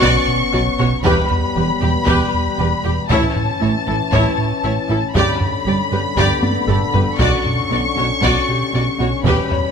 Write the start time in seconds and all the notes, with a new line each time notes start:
Already playing: B3 C#4 B4 C#6, sub drop
0.01 B1 B2 F#4 D5, taiko
0.28 B2
0.53 B1 B2 F#4 C#5 D5
0.79 B1 B2 F#4 C#5, taiko rim
1.04 E1 E2 G3 B3 G4 B4 B5, taiko
1.31 E2, taiko low
1.56 E1 E2 E3 G4 B4
1.81 E1 E2 G4
2.07 E1 E2 G4 B4, taiko
2.34 E2
2.58 E1 E2 G4 B4
2.84 E1 E2 G4
3.10 A1 A2 E3 C#4 E4 C#5 A5, taiko
3.36 A2, taiko low
3.61 A1 A2 A3 E4 C#5
3.87 A1 A2 E4 A4
4.12 A1 A2 E4 C#5, taiko
4.38 A2
4.64 A1 A2 E4 C#5
4.89 A1 A2 E4 A4
5.14 G1 G2 D3 G4 D5 B5, taiko
5.40 G2, taiko low
5.66 G1 G2 G3 G4 D5
5.92 G1 G2 G4 B4
6.17 G1 G2 B3 G4 D5, taiko
6.43 G2, taiko high
6.67 G1 G2 G4 A4 D5, taiko low-mid
6.93 G1 G2 G4 B4, taiko low
7.19 B1 B2 C#4 F#4 D5 C#6, taiko
7.45 B2, taiko low
7.71 B1 B2 B3 F#4 D5
7.96 B1 B2 F#4 C#5
8.22 B1 B2 F#4 D5, taiko
8.49 B2 G4
8.73 B1 B2 F#4 D5
8.99 B1 B2 F#4 C#5
9.24 E1 E2 G3 G4 B4 B5, taiko
9.51 E2 C#5, taiko low